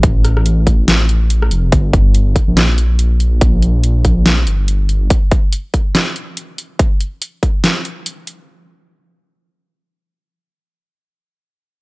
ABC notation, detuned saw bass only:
X:1
M:4/4
L:1/16
Q:"Swing 16ths" 1/4=142
K:Gm
V:1 name="Detuned saw bass" clef=bass
A,,,6- A,,, A,,,4 A,,,3 F,,,2 | G,,,6 z B,,,8- B,,,- | B,,,6- B,,, B,,,3 G,,,4 G,,,2 | z16 |
z16 | z16 | z16 |]